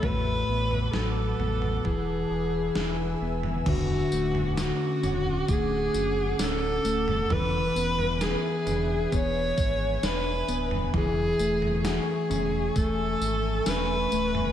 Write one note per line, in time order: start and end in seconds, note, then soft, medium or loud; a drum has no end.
0.00 0.43 A1 medium
0.00 1.94 A2 medium
0.00 0.12 E3 medium
0.00 0.12 A3 medium
0.00 0.12 C#4 soft
0.00 3.63 B4 medium
0.00 0.93 B4 loud
0.00 1.83 F#5 medium
0.00 1.83 A5 medium
0.00 1.83 D6 medium
0.00 kick medium
0.00 floor tom medium
0.04 1.95 F#4 medium
0.48 0.88 A1 medium
0.48 1.39 B3 medium
0.71 floor tom medium
0.93 1.34 A1 medium
0.93 1.94 F#3 medium
0.93 1.87 A4 medium
0.93 snare loud
1.39 1.79 A1 medium
1.39 1.94 B3 soft
1.39 floor tom soft
1.62 floor tom medium
1.84 2.25 E1 loud
1.84 3.66 E3 medium
1.84 3.22 G#4 medium
1.84 3.65 E5 medium
1.84 3.65 G#5 medium
1.84 3.65 E6 medium
1.84 kick medium
2.30 2.70 E1 medium
2.30 3.76 G#4 soft
2.75 3.16 E1 medium
2.75 3.76 E4 medium
2.75 snare loud
3.21 3.61 E1 medium
3.21 3.76 B3 medium
3.43 floor tom medium
3.66 4.07 D1 medium
3.66 7.30 D3 medium
3.66 7.26 C#4 medium
3.66 4.54 F#4 loud
3.66 7.26 F#5 medium
3.66 7.26 D6 medium
3.66 kick loud
3.66 floor tom loud
3.66 crash loud
4.12 4.72 D1 loud
4.12 5.47 A3 medium
4.12 tambourine medium
4.35 floor tom medium
4.57 5.92 F#4 medium
4.57 5.51 F#4 loud
4.57 snare loud
4.57 tambourine loud
5.03 5.43 D1 loud
5.03 6.38 C#4 medium
5.03 floor tom medium
5.03 tambourine medium
5.48 5.88 D1 loud
5.48 6.83 A3 medium
5.48 6.41 G#4 loud
5.48 kick medium
5.48 tambourine medium
5.94 6.34 F#1 loud
5.94 7.39 F#4 medium
5.94 tambourine medium
6.39 6.79 D1 loud
6.39 7.39 C#4 medium
6.39 7.33 A4 loud
6.39 snare loud
6.39 tambourine loud
6.84 7.24 D1 loud
6.84 7.39 A3 medium
6.84 tambourine medium
7.08 floor tom medium
7.30 7.70 E1 loud
7.30 10.92 E3 medium
7.30 10.90 B4 medium
7.30 8.24 B4 loud
7.30 10.90 E5 medium
7.30 14.52 G#5 medium
7.30 kick medium
7.30 floor tom loud
7.75 8.36 E1 loud
7.75 9.11 B3 medium
7.75 tambourine medium
7.99 floor tom medium
8.21 9.57 G#4 medium
8.21 9.15 G#4 loud
8.21 snare loud
8.21 tambourine medium
8.66 9.06 E1 loud
8.66 10.02 D4 medium
8.66 floor tom medium
8.66 tambourine medium
9.12 9.52 E1 loud
9.12 10.47 B3 medium
9.12 10.06 C#5 loud
9.12 kick medium
9.12 tambourine medium
9.58 9.98 G#1 loud
9.58 11.42 G#4 medium
9.58 kick loud
9.58 tambourine medium
10.02 10.43 E1 loud
10.02 11.03 D4 medium
10.02 10.72 B4 loud
10.02 snare loud
10.02 tambourine loud
10.48 10.88 D1 loud
10.48 11.03 B3 medium
10.48 tambourine medium
10.71 floor tom medium
10.94 11.34 E1 medium
10.94 14.52 E3 medium
10.94 14.52 A3 medium
10.94 11.82 G#4 loud
10.94 14.52 E5 medium
10.94 14.52 C#6 medium
10.94 kick loud
10.94 floor tom loud
11.39 11.99 E1 loud
11.39 12.75 A3 medium
11.39 tambourine medium
11.62 floor tom medium
11.84 12.06 F#4 medium
11.84 12.79 G#4 medium
11.84 snare loud
11.84 tambourine medium
12.30 12.70 E1 loud
12.30 13.66 C#4 medium
12.30 floor tom medium
12.30 tambourine medium
12.75 13.16 E1 loud
12.75 14.12 A3 medium
12.75 13.70 A4 loud
12.75 kick loud
12.75 tambourine medium
13.20 13.61 G#1 medium
13.20 tambourine medium
13.66 14.06 E1 loud
13.66 14.52 C#4 medium
13.66 14.52 B4 loud
13.66 snare loud
13.66 tambourine loud
14.12 14.52 D1 loud
14.12 14.52 A3 medium
14.12 tambourine medium
14.35 floor tom medium